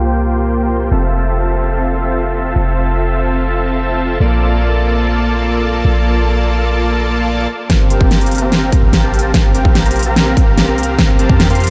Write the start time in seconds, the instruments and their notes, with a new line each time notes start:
Already playing: 808-style bass C2, supersaw synth A#3 F4 G4 C5 G5
0.92 808-style bass F1, supersaw synth C4 F4 A4 E5 A5
2.56 808-style bass F1
4.20 808-style bass A#1, supersaw synth A#3 F4 A4 D5 A5
5.85 808-style bass A#1
7.70 808-style bass G1, supersaw synth C4 G4 A#4 F5 A5, kick, snare, closed hi-hat
7.90 supersaw synth C4 G4 A#4 F5 G5, closed hi-hat
8.01 kick
8.11 snare, closed hi-hat
8.21 supersaw synth C4 G4 A#4 F5 A#5, closed hi-hat
8.26 closed hi-hat
8.31 closed hi-hat
8.35 closed hi-hat
8.38 supersaw synth C4 G4 A#4 F5 A#5, closed hi-hat
8.52 snare, closed hi-hat
8.72 supersaw synth C4 G4 A#4 F5 A#5, kick, closed hi-hat
8.83 808-style bass A1
8.93 kick, snare, closed hi-hat
9.03 supersaw synth C4 G4 A#4 F5 A5
9.14 closed hi-hat
9.19 closed hi-hat
9.34 supersaw synth C4 A#4, kick, snare, closed hi-hat
9.55 supersaw synth C4 G4 A#4 F5 G5, closed hi-hat
9.65 808-style bass A#1, kick
9.75 snare, closed hi-hat
9.86 supersaw synth C4 G4 A#4 F5 A#5, closed hi-hat
9.91 closed hi-hat
9.96 closed hi-hat
9.99 closed hi-hat
10.03 supersaw synth C4 G4 A#4 F5 A#5, closed hi-hat
10.16 snare, closed hi-hat
10.37 supersaw synth C4 G4 A#4 A#5, kick, closed hi-hat
10.58 snare, closed hi-hat
10.68 supersaw synth C4 G4 A#4 F5 A#5
10.78 808-style bass C2, closed hi-hat
10.83 closed hi-hat
10.99 supersaw synth C4 A#4 F5, kick, snare, closed hi-hat
11.19 supersaw synth C4 G4 A#4 F5 A5, closed hi-hat
11.29 808-style bass F2, kick
11.40 snare, closed hi-hat
11.50 supersaw synth C4 G4 A#4 F5 C6, closed hi-hat
11.55 closed hi-hat
11.60 closed hi-hat
11.64 closed hi-hat
11.67 closed hi-hat